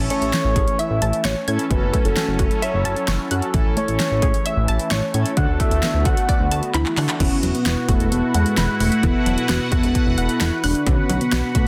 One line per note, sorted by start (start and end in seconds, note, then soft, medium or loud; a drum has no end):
0.00 1.69 E3 medium
0.00 1.69 A3 medium
0.00 0.59 C#4 medium
0.00 5.33 C#4 medium
0.00 0.59 E4 medium
0.00 0.59 A4 loud
0.10 0.25 A3 medium
0.10 0.81 C#5 loud
0.10 closed hi-hat medium
0.22 0.32 A1 loud
0.22 closed hi-hat medium
0.33 0.48 C#4 medium
0.33 snare loud
0.33 closed hi-hat medium
0.45 0.55 A1 medium
0.56 0.66 A1 loud
0.56 0.71 G#4 medium
0.56 kick medium
0.56 closed hi-hat medium
0.68 closed hi-hat medium
0.79 0.93 E5 loud
0.79 1.24 E5 loud
0.79 closed hi-hat medium
0.90 1.01 A1 loud
1.02 1.12 A1 medium
1.02 1.16 A5 medium
1.02 closed hi-hat medium
1.13 closed hi-hat soft
1.25 1.35 A1 loud
1.25 1.46 C#5 loud
1.25 1.39 C#6 loud
1.25 snare loud
1.25 closed hi-hat medium
1.48 1.58 A2 loud
1.48 1.66 C#4 medium
1.48 1.66 E4 medium
1.48 1.66 A4 medium
1.48 1.73 C#5 loud
1.48 1.62 G#6 medium
1.48 closed hi-hat medium
1.59 closed hi-hat soft
1.70 1.81 F#1 loud
1.70 1.85 E3 medium
1.70 3.52 F#3 medium
1.70 2.42 C#4 medium
1.70 3.52 E4 medium
1.70 2.42 F#4 medium
1.70 3.52 A4 medium
1.70 2.42 A4 medium
1.70 2.05 B4 loud
1.70 kick loud
1.70 closed hi-hat medium
1.82 1.92 F#1 loud
1.94 2.08 A3 medium
1.94 kick medium
1.94 closed hi-hat medium
2.05 2.15 F#1 medium
2.05 2.37 A4 medium
2.05 closed hi-hat medium
2.16 2.31 C#4 medium
2.16 snare loud
2.16 closed hi-hat medium
2.28 2.38 F#1 loud
2.39 2.49 F#1 loud
2.39 2.54 F#4 medium
2.39 2.64 A4 medium
2.39 kick medium
2.39 closed hi-hat medium
2.51 closed hi-hat medium
2.62 2.85 C#5 loud
2.62 2.77 E5 loud
2.62 closed hi-hat medium
2.74 2.84 F#1 loud
2.85 2.95 F#1 medium
2.85 3.28 C#5 medium
2.85 3.00 A5 medium
2.85 closed hi-hat medium
2.96 closed hi-hat soft
3.08 3.18 F#1 loud
3.08 3.23 C#6 loud
3.08 snare loud
3.08 closed hi-hat medium
3.31 3.41 F#2 loud
3.31 3.49 C#4 medium
3.31 3.49 F#4 medium
3.31 3.49 A4 medium
3.31 3.45 F#6 medium
3.31 closed hi-hat medium
3.42 closed hi-hat medium
3.54 3.64 A1 loud
3.54 5.35 E3 medium
3.54 3.68 E3 medium
3.54 7.16 A3 medium
3.54 4.26 C#4 medium
3.54 4.26 E4 medium
3.54 4.25 A4 loud
3.54 kick loud
3.54 closed hi-hat medium
3.65 3.76 A1 medium
3.77 3.91 A3 medium
3.77 4.47 C#5 medium
3.77 closed hi-hat medium
3.88 3.98 A1 medium
3.88 closed hi-hat medium
4.00 4.14 C#4 medium
4.00 snare loud
4.00 closed hi-hat medium
4.11 4.21 A1 medium
4.22 4.33 A1 loud
4.22 4.37 G#4 medium
4.22 kick loud
4.22 closed hi-hat medium
4.34 closed hi-hat medium
4.45 4.60 E5 loud
4.45 4.93 E5 loud
4.45 closed hi-hat medium
4.57 4.67 A1 medium
4.68 4.79 A1 loud
4.68 4.83 A5 loud
4.68 closed hi-hat medium
4.79 closed hi-hat soft
4.91 5.01 A1 medium
4.91 5.14 C#5 loud
4.91 5.06 C#6 loud
4.91 snare loud
4.91 closed hi-hat medium
5.14 5.24 A2 loud
5.14 5.32 C#4 medium
5.14 5.32 E4 medium
5.14 5.32 A4 medium
5.14 5.35 C#5 medium
5.14 5.29 G#6 medium
5.14 closed hi-hat medium
5.26 closed hi-hat medium
5.37 5.47 D2 loud
5.37 7.18 D3 medium
5.37 5.52 D3 medium
5.37 7.18 B3 medium
5.37 6.09 D4 medium
5.37 7.18 F#4 medium
5.37 6.09 F#4 medium
5.37 6.09 A4 medium
5.37 5.47 F#5 loud
5.37 kick loud
5.37 closed hi-hat medium
5.48 5.59 D2 loud
5.60 5.74 A3 medium
5.60 6.07 E5 loud
5.60 kick medium
5.60 closed hi-hat medium
5.71 5.82 D2 medium
5.71 closed hi-hat medium
5.83 5.97 B3 medium
5.83 snare loud
5.83 closed hi-hat medium
5.94 6.04 D2 loud
6.05 6.16 D2 loud
6.05 6.20 F#4 medium
6.05 6.74 F#5 loud
6.05 kick loud
6.05 closed hi-hat medium
6.17 closed hi-hat medium
6.29 6.43 D5 loud
6.29 kick medium
6.29 closed hi-hat medium
6.40 6.50 D2 loud
6.51 6.62 D2 medium
6.51 6.66 A5 medium
6.51 closed hi-hat medium
6.63 closed hi-hat soft
6.74 6.85 D2 loud
6.74 7.17 E4 loud
6.74 6.89 B5 loud
6.74 clap medium
6.74 closed hi-hat medium
6.86 clap medium
6.97 7.08 D3 loud
6.97 7.15 D4 medium
6.97 7.15 F#4 medium
6.97 7.15 A4 loud
6.97 7.12 F#6 medium
6.97 clap medium
6.97 open hi-hat medium
7.09 clap loud
7.09 closed hi-hat medium
7.20 7.30 E1 loud
7.20 7.35 E3 medium
7.20 7.56 B3 medium
7.20 7.52 C#4 loud
7.20 7.56 E4 medium
7.20 10.83 E4 medium
7.20 7.56 F#4 medium
7.20 10.83 F#4 medium
7.20 11.68 B4 medium
7.20 10.83 F#5 medium
7.20 kick loud
7.20 closed hi-hat medium
7.20 crash loud
7.43 7.53 E1 medium
7.43 7.58 F#3 medium
7.43 closed hi-hat medium
7.55 7.90 B3 medium
7.55 closed hi-hat medium
7.66 7.76 E1 loud
7.66 7.84 B3 medium
7.66 7.80 B3 medium
7.66 7.84 E4 medium
7.66 7.84 F#4 medium
7.66 snare loud
7.66 closed hi-hat medium
7.89 7.99 E1 loud
7.89 8.13 A3 medium
7.89 8.61 B3 medium
7.89 8.60 E4 medium
7.89 8.03 F#4 medium
7.89 8.61 A4 medium
7.89 kick loud
7.89 closed hi-hat medium
8.00 8.11 E1 medium
8.00 closed hi-hat medium
8.12 8.22 E1 loud
8.12 8.36 B3 loud
8.12 closed hi-hat medium
8.34 8.45 E2 loud
8.34 8.82 G#3 loud
8.34 8.49 F#5 medium
8.34 closed hi-hat medium
8.46 closed hi-hat soft
8.57 8.68 E1 loud
8.57 8.72 B5 loud
8.57 snare loud
8.57 closed hi-hat medium
8.80 8.91 E1 loud
8.80 9.03 A3 medium
8.80 8.95 F#6 medium
8.80 open hi-hat medium
8.92 closed hi-hat medium
9.03 9.14 E1 loud
9.03 9.18 E3 medium
9.03 10.42 B3 loud
9.03 9.39 B3 medium
9.03 9.39 E4 medium
9.03 9.39 A4 medium
9.03 kick loud
9.03 closed hi-hat medium
9.26 9.36 E1 loud
9.26 9.41 F#3 medium
9.26 closed hi-hat medium
9.38 closed hi-hat medium
9.49 9.59 E1 loud
9.49 9.64 B3 medium
9.49 9.67 B3 medium
9.49 9.67 E4 medium
9.49 9.67 F#4 medium
9.49 snare loud
9.49 closed hi-hat medium
9.72 9.82 E1 loud
9.72 10.44 B3 medium
9.72 10.44 E4 medium
9.72 9.87 F#4 medium
9.72 10.44 A4 loud
9.72 kick loud
9.72 closed hi-hat medium
9.83 9.94 E1 loud
9.83 closed hi-hat medium
9.95 kick medium
9.95 closed hi-hat medium
10.06 10.17 E1 medium
10.18 10.28 E1 loud
10.18 10.32 F#5 loud
10.18 closed hi-hat medium
10.29 closed hi-hat soft
10.41 10.51 E1 loud
10.41 10.63 E4 loud
10.41 10.55 B5 loud
10.41 snare loud
10.41 closed hi-hat medium
10.64 10.74 E1 loud
10.64 10.88 D4 loud
10.64 10.78 F#6 loud
10.64 open hi-hat medium
10.75 closed hi-hat medium
10.86 10.97 B1 loud
10.86 11.22 D3 medium
10.86 11.01 D3 medium
10.86 11.22 B3 medium
10.86 11.23 C#4 loud
10.86 11.68 F#4 medium
10.86 11.22 F#4 medium
10.86 11.68 F#5 medium
10.86 11.68 B5 medium
10.86 kick loud
10.86 closed hi-hat medium
11.09 11.20 B1 medium
11.09 11.24 F#3 medium
11.09 closed hi-hat medium
11.21 11.55 B3 loud
11.21 closed hi-hat medium
11.32 11.43 B1 loud
11.32 11.50 B3 medium
11.32 11.47 B3 medium
11.32 11.50 D4 medium
11.32 11.50 F#4 medium
11.32 snare loud
11.32 closed hi-hat medium
11.55 11.65 B1 loud
11.55 11.68 A3 loud
11.55 11.68 B3 medium
11.55 11.68 D4 medium
11.55 11.68 F#4 medium
11.55 kick loud
11.55 closed hi-hat medium